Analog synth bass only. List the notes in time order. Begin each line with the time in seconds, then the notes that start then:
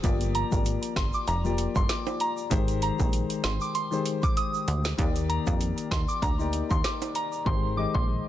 0.04 G1
0.52 G#1
0.96 G1
1.28 F1
1.76 G1
2.51 G#1
3.00 A#1
3.44 G#1
4.68 D2
4.99 D#2
5.47 F2
5.91 D#2
6.22 D2
6.71 D#2
7.46 G#1
7.95 A#1